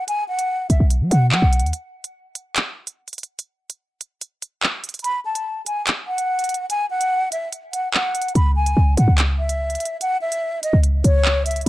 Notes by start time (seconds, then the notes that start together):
0.08 G#5, closed hi-hat
0.28 F#5
0.39 closed hi-hat
0.70 B1 E5, closed hi-hat
0.80 B1
0.90 closed hi-hat
1.01 F#3
1.11 B2 F#5, closed hi-hat
1.32 F#3 F#5, clap
1.42 B1
1.53 closed hi-hat
1.59 D#2, closed hi-hat
1.66 closed hi-hat
1.73 closed hi-hat
2.04 closed hi-hat
2.35 closed hi-hat
2.56 clap, closed hi-hat
2.87 closed hi-hat
3.08 closed hi-hat
3.13 closed hi-hat
3.18 closed hi-hat
3.23 closed hi-hat
3.39 closed hi-hat
3.70 closed hi-hat
4.01 closed hi-hat
4.21 closed hi-hat
4.42 closed hi-hat
4.63 clap
4.84 closed hi-hat
4.89 closed hi-hat
4.94 closed hi-hat
4.99 closed hi-hat
5.04 B5, closed hi-hat
5.25 A5
5.35 closed hi-hat
5.66 G#5, closed hi-hat
5.87 clap, closed hi-hat
6.07 F#5
6.18 closed hi-hat
6.39 closed hi-hat
6.44 closed hi-hat
6.49 closed hi-hat
6.54 closed hi-hat
6.70 G#5, closed hi-hat
6.90 F#5
7.01 closed hi-hat
7.32 E5, closed hi-hat
7.52 closed hi-hat
7.73 F#5, closed hi-hat
7.94 F#5, clap
8.15 closed hi-hat
8.22 closed hi-hat
8.28 closed hi-hat
8.35 C#2 B5, closed hi-hat
8.56 G#5
8.66 closed hi-hat
8.77 C#2
8.97 G#2 F#5, closed hi-hat
9.08 C#2
9.18 clap, closed hi-hat
9.39 E5
9.49 closed hi-hat
9.70 closed hi-hat
9.75 closed hi-hat
9.80 closed hi-hat
9.85 closed hi-hat
10.01 F#5, closed hi-hat
10.21 E5
10.32 closed hi-hat
10.63 D#5, closed hi-hat
10.73 C#2
10.83 closed hi-hat
11.04 C#2 C#5, closed hi-hat
11.25 clap
11.46 E5, closed hi-hat
11.51 closed hi-hat
11.56 closed hi-hat
11.61 closed hi-hat